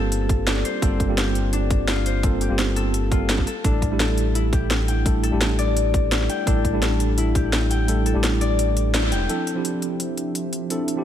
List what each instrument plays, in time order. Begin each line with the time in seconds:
Already playing: sub bass G1, tine electric piano G3 A#3 C4 F4 G4 A4, harp C4 D4 F4 G4 A4 C5
0.12 closed hi-hat
0.29 kick, closed hi-hat
0.47 harp D4, snare, closed hi-hat
0.57 snare
0.65 harp C5, closed hi-hat
0.82 sub bass G1, tine electric piano G3 A#3 C4 F4 A4, harp C4, kick, closed hi-hat
1.00 kick, closed hi-hat
1.08 tine electric piano G3 A#3 C4 F4 G4
1.18 harp G4, snare, closed hi-hat
1.35 closed hi-hat
1.53 harp D4, closed hi-hat
1.71 kick, closed hi-hat
1.88 harp F4, snare, closed hi-hat
2.06 harp C5, closed hi-hat
2.23 tine electric piano G3 A#3 C4 F4 A4, kick, closed hi-hat
2.41 harp G4, closed hi-hat
2.49 sub bass G1, tine electric piano G3 A#3 C4 F4 G4
2.59 snare, closed hi-hat
2.76 harp A4, closed hi-hat
2.94 closed hi-hat
3.11 tine electric piano G3 A#3 C4 F4 A4, harp F4, kick, closed hi-hat
3.29 harp A4, snare, closed hi-hat
3.38 kick, snare
3.47 harp A4, closed hi-hat
3.64 sub bass A1, tine electric piano G3 A3 D4 E4 A4, harp D4, kick, closed hi-hat
3.82 kick, closed hi-hat
3.90 tine electric piano G3 A3 D4 E4 G4
4.00 harp A4, snare, closed hi-hat
4.18 closed hi-hat
4.35 harp E4, closed hi-hat
4.53 harp G4, kick, closed hi-hat
4.71 snare, closed hi-hat
4.88 harp G5, closed hi-hat
5.05 tine electric piano G3 A3 D4 E4 A4, kick, closed hi-hat
5.23 harp A4, closed hi-hat
5.31 sub bass A1, tine electric piano G3 A3 D4 E4 G4
5.41 snare, closed hi-hat
5.59 harp D5, closed hi-hat
5.77 closed hi-hat
5.94 kick, closed hi-hat
6.12 harp E4, snare, closed hi-hat
6.21 snare
6.29 harp G5, closed hi-hat
6.46 sub bass A1, tine electric piano G3 A3 D4 E4 A4, harp D4, kick, closed hi-hat
6.65 kick, closed hi-hat
6.72 tine electric piano G3 A3 D4 E4 G4
6.82 harp A4, snare, closed hi-hat
7.00 closed hi-hat
7.18 harp E4, closed hi-hat
7.35 harp G4, kick, closed hi-hat
7.53 snare, closed hi-hat
7.71 harp G5, closed hi-hat
7.88 tine electric piano G3 A3 D4 E4 A4, closed hi-hat
8.06 harp A4, closed hi-hat
8.14 sub bass A1, tine electric piano G3 A3 D4 E4 G4
8.24 snare, closed hi-hat
8.41 harp D5, closed hi-hat
8.59 closed hi-hat
8.77 closed hi-hat
8.94 harp E4, snare, closed hi-hat
9.04 snare
9.12 sub bass E1, harp G5, closed hi-hat
9.29 tine electric piano F3 C4 D4 E4 A4, analog synth pad F3 D4 C5 E5, closed hi-hat
9.47 closed hi-hat
9.55 tine electric piano F3 C4 D4 E4 G4
9.65 closed hi-hat
9.82 closed hi-hat
10.00 closed hi-hat
10.17 closed hi-hat
10.35 closed hi-hat
10.53 closed hi-hat
10.70 tine electric piano F3 C4 D4 E4 A4, closed hi-hat
10.88 closed hi-hat
10.96 tine electric piano F3 C4 D4 E4 G4